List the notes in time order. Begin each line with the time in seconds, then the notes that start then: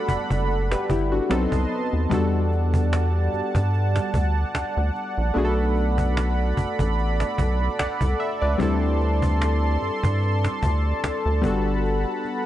Already playing: G3 A3 B3 D4 F#4 A4 D5 F#5 B5
0.09 F#1, cajon bass
0.30 F#1, cajon bass
0.49 cajon slap
0.71 G4 B4, cajon slap
0.90 G1 E4 G4, cajon bass
1.12 D4 F#4
1.29 B1 F#3 B3 C4 D#4 A4 B4 D#5 A5 C6, cajon slap
1.52 C2, cajon bass
1.93 D#2
2.09 E2 G3 B3 D4 F#4 D5 F#5 A5, cajon bass
2.14 A4
2.52 cajon slap
2.74 cajon bass
2.93 cajon slap
3.33 G2, cajon slap
3.55 G2, cajon bass, cajon slap
3.73 cajon slap
3.96 cajon slap
4.14 D2, cajon bass
4.55 D2, cajon slap
4.77 D2
4.95 cajon slap
5.18 A#1
5.34 B1 A3 B3 D4 F#4 A4 B5, cajon slap
5.38 G#4
5.45 A4
5.76 cajon slap
5.98 cajon bass
6.17 cajon slap
6.57 A1, cajon bass
6.79 A1, cajon bass, cajon slap
6.98 cajon slap
7.20 cajon slap
7.38 B1, cajon bass
7.79 C2 D5 F#5, cajon slap
8.01 C2, cajon bass
8.20 E5
8.41 C#2 B4 D5
8.58 D2 G3 C4 D4 E4 A5 C6, cajon bass
8.62 A4
9.00 cajon slap
9.22 cajon bass
9.42 cajon slap
9.82 G2, cajon slap
10.03 G2, cajon bass, cajon slap
10.22 cajon slap
10.45 cajon slap
10.63 D2, cajon bass
11.04 D2, cajon slap
11.26 D2
11.42 G1 G3 B3 D4 F#4 F#5 B5, cajon bass
11.46 A4
11.84 cajon slap
12.25 cajon slap